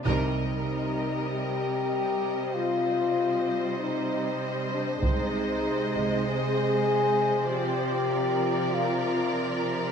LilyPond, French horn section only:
\new Staff \with { instrumentName = "French horn section" } { \time 4/4 \key ees \major \tempo 4 = 97 ees'2 g'2 | f'2 ees'4 r8 d'8 | ees'2 aes'2 | g'2 f'4 r4 | }